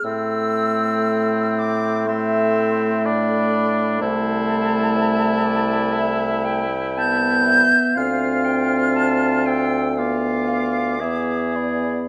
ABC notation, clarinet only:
X:1
M:4/4
L:1/8
Q:1/4=60
K:Am
V:1 name="Clarinet"
z4 e2 d2 | c2 e d e g a e | f g a g f f e d |]